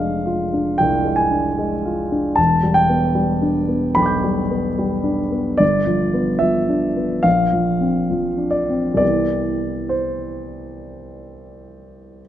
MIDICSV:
0, 0, Header, 1, 2, 480
1, 0, Start_track
1, 0, Key_signature, 0, "major"
1, 0, Tempo, 792602
1, 1441, Time_signature, 4, 2, 24, 8
1, 1920, Tempo, 815217
1, 4320, Tempo, 852273
1, 4800, Tempo, 914634
1, 6996, End_track
2, 0, Start_track
2, 0, Title_t, "Grand piano"
2, 0, Program_c, 0, 0
2, 0, Control_c, 0, 64, 127
2, 0, Note_on_c, 0, 29, 39
2, 0, Note_on_c, 0, 56, 33
2, 0, Note_on_c, 0, 62, 34
2, 0, Note_on_c, 0, 77, 64
2, 95, Note_off_c, 0, 62, 0
2, 156, Note_on_c, 0, 65, 35
2, 256, Note_off_c, 0, 56, 0
2, 323, Note_on_c, 0, 62, 34
2, 415, Note_off_c, 0, 65, 0
2, 452, Note_off_c, 0, 29, 0
2, 471, Note_off_c, 0, 77, 0
2, 472, Note_on_c, 0, 79, 71
2, 487, Note_on_c, 0, 36, 37
2, 579, Note_off_c, 0, 62, 0
2, 635, Note_on_c, 0, 56, 34
2, 702, Note_on_c, 0, 80, 67
2, 718, Note_off_c, 0, 79, 0
2, 741, Note_off_c, 0, 36, 0
2, 791, Note_on_c, 0, 62, 29
2, 897, Note_off_c, 0, 56, 0
2, 959, Note_on_c, 0, 56, 37
2, 1056, Note_off_c, 0, 62, 0
2, 1124, Note_on_c, 0, 65, 33
2, 1218, Note_off_c, 0, 56, 0
2, 1282, Note_on_c, 0, 62, 34
2, 1378, Note_off_c, 0, 65, 0
2, 1427, Note_on_c, 0, 81, 74
2, 1431, Note_off_c, 0, 80, 0
2, 1438, Note_on_c, 0, 28, 42
2, 1440, Note_off_c, 0, 62, 0
2, 1451, Control_c, 0, 64, 0
2, 1556, Control_c, 0, 64, 127
2, 1595, Note_on_c, 0, 55, 33
2, 1661, Note_on_c, 0, 79, 75
2, 1672, Note_off_c, 0, 81, 0
2, 1752, Note_on_c, 0, 59, 36
2, 1854, Note_off_c, 0, 55, 0
2, 1908, Note_on_c, 0, 55, 36
2, 2013, Note_off_c, 0, 59, 0
2, 2068, Note_on_c, 0, 62, 37
2, 2168, Note_off_c, 0, 55, 0
2, 2222, Note_on_c, 0, 59, 33
2, 2328, Note_off_c, 0, 62, 0
2, 2373, Note_off_c, 0, 28, 0
2, 2377, Note_on_c, 0, 83, 76
2, 2379, Note_off_c, 0, 79, 0
2, 2386, Note_on_c, 0, 35, 38
2, 2388, Note_on_c, 0, 79, 30
2, 2422, Note_on_c, 0, 86, 30
2, 2443, Note_on_c, 0, 91, 28
2, 2485, Note_off_c, 0, 59, 0
2, 2548, Note_on_c, 0, 55, 34
2, 2649, Note_off_c, 0, 35, 0
2, 2707, Note_on_c, 0, 59, 33
2, 2812, Note_off_c, 0, 55, 0
2, 2870, Note_on_c, 0, 55, 36
2, 2972, Note_off_c, 0, 59, 0
2, 3019, Note_on_c, 0, 62, 37
2, 3112, Note_off_c, 0, 83, 0
2, 3132, Note_off_c, 0, 55, 0
2, 3184, Note_on_c, 0, 59, 33
2, 3284, Note_off_c, 0, 62, 0
2, 3331, Note_off_c, 0, 79, 0
2, 3336, Note_on_c, 0, 74, 75
2, 3348, Note_off_c, 0, 86, 0
2, 3348, Note_on_c, 0, 31, 42
2, 3351, Note_off_c, 0, 59, 0
2, 3359, Note_off_c, 0, 91, 0
2, 3368, Control_c, 0, 64, 0
2, 3453, Control_c, 0, 64, 127
2, 3507, Note_on_c, 0, 53, 33
2, 3668, Note_on_c, 0, 59, 32
2, 3768, Note_off_c, 0, 53, 0
2, 3814, Note_on_c, 0, 76, 66
2, 3826, Note_off_c, 0, 74, 0
2, 3826, Note_on_c, 0, 53, 34
2, 3929, Note_off_c, 0, 59, 0
2, 3992, Note_on_c, 0, 62, 31
2, 4089, Note_off_c, 0, 53, 0
2, 4155, Note_on_c, 0, 59, 32
2, 4254, Note_off_c, 0, 62, 0
2, 4293, Note_off_c, 0, 31, 0
2, 4308, Note_on_c, 0, 77, 72
2, 4311, Note_off_c, 0, 76, 0
2, 4313, Note_on_c, 0, 34, 43
2, 4320, Note_off_c, 0, 59, 0
2, 4334, Control_c, 0, 64, 0
2, 4426, Control_c, 0, 64, 127
2, 4479, Note_on_c, 0, 53, 28
2, 4637, Note_on_c, 0, 60, 28
2, 4736, Note_off_c, 0, 53, 0
2, 4803, Note_on_c, 0, 53, 29
2, 4894, Note_off_c, 0, 60, 0
2, 4945, Note_on_c, 0, 62, 31
2, 5013, Note_on_c, 0, 74, 58
2, 5030, Note_off_c, 0, 77, 0
2, 5052, Note_off_c, 0, 53, 0
2, 5113, Note_on_c, 0, 60, 28
2, 5208, Note_off_c, 0, 62, 0
2, 5242, Note_on_c, 0, 36, 35
2, 5247, Note_on_c, 0, 52, 25
2, 5250, Note_off_c, 0, 74, 0
2, 5254, Note_on_c, 0, 55, 25
2, 5255, Note_off_c, 0, 34, 0
2, 5258, Note_on_c, 0, 74, 65
2, 5260, Note_on_c, 0, 59, 25
2, 5264, Note_on_c, 0, 67, 24
2, 5278, Note_off_c, 0, 60, 0
2, 5290, Control_c, 0, 64, 0
2, 5393, Control_c, 0, 64, 127
2, 5741, Note_on_c, 0, 72, 45
2, 5762, Note_off_c, 0, 74, 0
2, 6948, Note_off_c, 0, 72, 0
2, 6996, Note_off_c, 0, 36, 0
2, 6996, Note_off_c, 0, 52, 0
2, 6996, Note_off_c, 0, 55, 0
2, 6996, Note_off_c, 0, 59, 0
2, 6996, Note_off_c, 0, 67, 0
2, 6996, End_track
0, 0, End_of_file